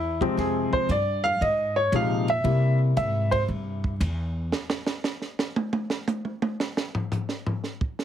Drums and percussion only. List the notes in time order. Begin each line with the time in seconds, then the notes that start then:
0.21 kick, ride
0.37 kick, snare, ride
0.73 kick
0.89 kick, hi-hat pedal, ride
1.25 ride
1.41 kick, ride
1.93 kick, hi-hat pedal, ride
2.28 ride
2.44 kick, ride
2.97 kick, hi-hat pedal, ride
3.32 kick, ride
3.48 kick
3.84 kick
4.01 kick, hi-hat pedal, ride
4.52 snare
4.70 snare
4.86 snare
5.04 snare, hi-hat pedal
5.22 snare
5.39 snare
5.56 high tom
5.73 high tom
5.90 snare
6.08 hi-hat pedal, high tom
6.25 high tom
6.42 high tom
6.60 snare
6.77 snare
6.95 floor tom
7.12 floor tom, hi-hat pedal
7.29 snare
7.47 floor tom
7.64 snare
7.81 kick
7.99 snare